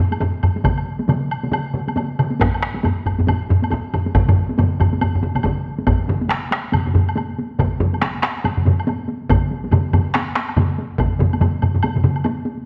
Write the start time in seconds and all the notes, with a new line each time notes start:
0.12 taiko high, high woodblock
0.20 taiko low-mid, taiko high, high woodblock
0.43 taiko low-mid, high woodblock
0.56 taiko high
0.64 taiko, taiko mid, taiko high, high woodblock
0.78 high woodblock
1.00 taiko high
1.09 taiko mid, taiko high, high woodblock
1.31 high woodblock
1.44 taiko mid, taiko high
1.52 taiko mid, taiko high, high woodblock
1.74 taiko mid, taiko high
1.88 taiko high, high woodblock
1.96 taiko mid, taiko high, high woodblock
2.19 taiko mid, high woodblock
2.30 taiko high
2.40 taiko rim, taiko, taiko high, high woodblock
2.54 high woodblock
2.62 taiko rim
2.74 taiko high
2.84 taiko low-mid, taiko high, high woodblock
3.06 taiko, taiko low-mid, high woodblock
3.19 taiko low-mid, taiko high
3.27 taiko low-mid, taiko high, high woodblock
3.49 taiko low-mid, taiko high
3.62 taiko high, high woodblock
3.71 taiko low-mid, taiko high, high woodblock
3.94 taiko low-mid, high woodblock
4.06 taiko high
4.15 taiko, taiko low-mid, taiko mid, taiko high, high woodblock
4.29 taiko low-mid, taiko mid, high woodblock
4.49 taiko high
4.58 taiko low-mid, taiko mid, taiko high, high woodblock
4.80 taiko, taiko low-mid, taiko mid, high woodblock
4.93 taiko high
5.01 taiko low-mid, taiko mid, taiko high, high woodblock
5.15 taiko low-mid, taiko mid
5.23 taiko low-mid, taiko mid, taiko high
5.35 taiko low-mid, taiko mid, taiko high, high woodblock
5.43 taiko, taiko low-mid, taiko mid, taiko high, high woodblock
5.79 taiko high
5.87 taiko, taiko low-mid, taiko mid, taiko high, high woodblock
6.00 taiko high
6.08 taiko low-mid, taiko mid, taiko high
6.22 taiko high
6.29 taiko rim, taiko high, high woodblock
6.43 taiko high
6.51 taiko rim, taiko high, high woodblock
6.64 taiko high
6.72 taiko low-mid, taiko mid, taiko high, high woodblock
6.86 taiko low-mid, taiko mid, taiko high
6.94 taiko low-mid, taiko mid, taiko high
7.08 taiko high, high woodblock
7.16 taiko high, high woodblock
7.29 taiko high
7.39 taiko high
7.51 taiko high
7.59 taiko, taiko low-mid, taiko mid, taiko high, high woodblock
7.72 taiko high
7.80 taiko low-mid, taiko mid, taiko high
7.93 taiko high, high woodblock
8.02 taiko rim, taiko high, high woodblock
8.15 taiko high
8.23 taiko rim, taiko high, high woodblock
8.36 taiko high
8.44 taiko low-mid, taiko mid, taiko high, high woodblock
8.57 taiko low-mid, taiko mid, taiko high
8.65 taiko low-mid, taiko mid, taiko high
8.78 taiko high, high woodblock
8.87 taiko high, high woodblock
9.00 taiko high
9.08 taiko high
9.21 taiko high
9.29 taiko, taiko low-mid, taiko mid, taiko high, high woodblock
9.43 taiko high
9.51 taiko high
9.64 taiko high
9.71 taiko low-mid, taiko mid, taiko high, high woodblock
9.93 taiko low-mid, taiko mid, taiko high, high woodblock
10.06 taiko high
10.14 taiko rim, taiko high, high woodblock
10.28 taiko high
10.35 taiko rim, taiko high
10.48 taiko high, high woodblock
10.57 taiko low-mid, taiko mid, taiko high, high woodblock
10.71 taiko high
10.79 taiko high
10.99 taiko, taiko low-mid, taiko mid, taiko high, high woodblock
11.12 taiko high
11.19 taiko low-mid, taiko mid, taiko high
11.33 taiko high, high woodblock
11.40 taiko low-mid, taiko mid, taiko high, high woodblock
11.54 taiko high
11.62 taiko low-mid, taiko mid, taiko high, high woodblock
11.74 taiko low-mid, taiko mid, taiko high
11.83 taiko low-mid, taiko mid, taiko high, high woodblock
11.96 taiko low-mid, taiko mid, taiko high
12.04 taiko low-mid, taiko mid, taiko high
12.16 taiko high, high woodblock
12.24 taiko high, high woodblock
12.37 taiko high
12.45 taiko high
12.57 taiko high